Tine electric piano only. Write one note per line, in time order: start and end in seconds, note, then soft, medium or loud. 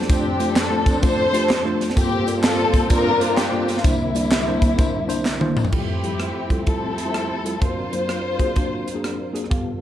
0.09 1.93 F2 medium
0.09 0.29 A3 medium
0.09 0.29 D4 medium
0.09 0.30 F4 medium
0.09 0.30 C5 medium
0.40 0.56 A3 medium
0.40 0.56 D4 medium
0.40 0.56 F4 medium
0.40 0.56 C5 medium
0.71 0.94 A3 medium
0.71 0.94 D4 medium
0.71 0.95 F4 medium
0.71 0.95 C5 medium
1.02 1.23 A3 medium
1.02 1.23 D4 medium
1.02 1.23 F4 medium
1.02 1.23 A4 medium
1.33 1.49 A3 medium
1.33 1.49 D4 medium
1.33 1.49 F4 medium
1.33 1.50 G4 medium
1.65 1.88 A3 medium
1.65 1.88 D4 medium
1.65 1.88 F4 medium
1.65 1.89 C5 loud
1.96 3.80 G2 medium
1.96 2.16 A#3 medium
1.96 2.17 F4 medium
1.96 2.17 A4 medium
1.96 2.17 C5 medium
2.27 2.43 A#3 medium
2.27 2.43 F4 medium
2.27 2.43 A4 medium
2.27 2.43 D5 medium
2.58 2.82 A#3 medium
2.58 2.82 F4 medium
2.58 2.82 A4 medium
2.58 2.82 D5 medium
2.90 3.10 A#3 medium
2.90 3.11 F4 medium
2.90 3.11 A4 medium
2.90 3.11 D5 medium
3.20 3.36 A#3 medium
3.20 3.37 F4 medium
3.20 3.37 A4 medium
3.20 3.37 C5 medium
3.51 3.75 A#3 medium
3.51 3.75 F4 medium
3.51 3.76 A4 medium
3.51 3.76 D5 medium
3.84 5.68 C2 medium
3.84 5.69 C3 medium
3.84 4.04 A#3 medium
3.84 4.04 D4 medium
3.84 4.04 E4 medium
3.84 4.05 C5 medium
4.14 4.31 A#3 medium
4.14 4.31 D4 medium
4.14 4.31 E4 medium
4.14 4.31 D5 medium
4.47 4.70 A#3 medium
4.47 4.70 D4 medium
4.47 4.70 E4 medium
4.47 4.70 C5 medium
4.77 4.98 A#3 medium
4.77 4.98 D4 medium
4.77 4.98 E4 medium
4.77 4.99 C5 medium
5.08 5.24 A#3 medium
5.08 5.25 D4 medium
5.08 5.25 E4 medium
5.08 5.25 C5 loud
5.40 5.64 A#3 medium
5.40 5.64 D4 medium
5.40 5.64 E4 medium
5.40 5.64 C5 medium
5.72 7.58 F2 soft
5.72 5.92 G3 medium
5.72 5.93 E4 medium
5.72 5.93 F4 medium
5.72 5.93 A4 medium
6.03 6.30 F3 medium
6.03 6.29 G3 medium
6.03 6.29 E4 medium
6.03 6.30 G4 medium
6.50 6.61 G3 medium
6.50 6.61 E4 medium
6.50 6.61 F4 medium
6.50 6.62 A4 medium
6.67 6.97 G3 medium
6.67 6.97 E4 medium
6.67 6.98 F4 medium
6.67 6.98 A4 medium
7.05 7.29 G3 medium
7.05 7.29 E4 medium
7.05 7.29 F4 medium
7.05 7.29 A4 medium
7.44 7.55 G3 medium
7.44 7.56 E4 medium
7.44 7.56 F4 medium
7.44 7.56 A4 medium
7.62 9.47 F#2 medium
7.62 7.82 A#3 medium
7.62 7.82 D4 medium
7.62 7.82 F#4 medium
7.62 7.82 C5 medium
7.92 8.19 F#3 medium
7.92 8.18 A#3 medium
7.92 8.18 D4 medium
7.92 8.19 C5 medium
8.39 8.50 A#3 medium
8.39 8.50 D4 medium
8.39 8.50 F#4 medium
8.39 8.51 G#4 medium
8.56 8.86 A#3 medium
8.56 8.86 D4 medium
8.56 8.87 F#4 medium
8.56 8.87 C5 medium
8.94 9.18 A#3 medium
8.94 9.18 D4 medium
8.94 9.18 F#4 medium
8.94 9.19 G#4 medium
9.33 9.45 A#3 medium
9.33 9.45 D4 medium
9.33 9.45 F#4 medium
9.33 9.45 G#4 medium
9.50 9.81 G2 medium
9.50 9.71 B3 medium
9.50 9.71 G4 medium
9.50 9.71 A4 medium
9.50 9.71 F5 medium